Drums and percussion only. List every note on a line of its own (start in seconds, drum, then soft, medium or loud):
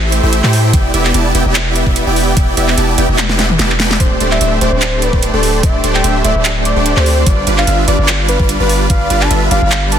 0.12 closed hi-hat medium
0.33 closed hi-hat medium
0.44 clap soft
0.53 open hi-hat medium
0.73 kick loud
0.73 closed hi-hat medium
0.94 closed hi-hat medium
1.05 clap soft
1.14 closed hi-hat medium
1.35 closed hi-hat medium
1.55 clap loud
1.55 closed hi-hat medium
1.76 closed hi-hat medium
1.87 kick medium
1.96 closed hi-hat medium
2.16 open hi-hat medium
2.37 kick loud
2.37 closed hi-hat medium
2.57 closed hi-hat medium
2.68 clap soft
2.78 closed hi-hat medium
2.98 closed hi-hat medium
3.18 clap loud
3.18 closed hi-hat medium
3.18 high tom medium
3.29 snare medium
3.39 snare medium
3.39 closed hi-hat medium
3.50 mid tom medium
3.59 snare medium
3.59 closed hi-hat medium
3.70 clap soft
3.80 snare loud
3.80 open hi-hat medium
3.91 snare medium
4.00 kick loud
4.00 closed hi-hat medium
4.20 closed hi-hat medium
4.31 clap soft
4.41 closed hi-hat medium
4.61 closed hi-hat medium
4.82 clap loud
4.82 closed hi-hat medium
5.02 closed hi-hat medium
5.13 kick medium
5.23 closed hi-hat medium
5.43 open hi-hat medium
5.63 kick loud
5.63 closed hi-hat medium
5.84 closed hi-hat medium
5.95 clap soft
6.04 closed hi-hat medium
6.25 closed hi-hat medium
6.45 clap loud
6.45 closed hi-hat medium
6.65 closed hi-hat medium
6.86 closed hi-hat medium
6.97 clap soft
7.06 open hi-hat medium
7.26 kick loud
7.26 closed hi-hat medium
7.47 closed hi-hat medium
7.58 clap soft
7.67 closed hi-hat medium
7.88 closed hi-hat medium
8.08 clap loud
8.08 closed hi-hat medium
8.29 closed hi-hat medium
8.40 kick medium
8.49 closed hi-hat medium
8.69 open hi-hat medium
8.90 kick loud
8.90 closed hi-hat medium
9.10 closed hi-hat medium
9.21 clap soft
9.31 closed hi-hat medium
9.51 closed hi-hat medium
9.72 clap loud
9.72 closed hi-hat medium
9.92 closed hi-hat medium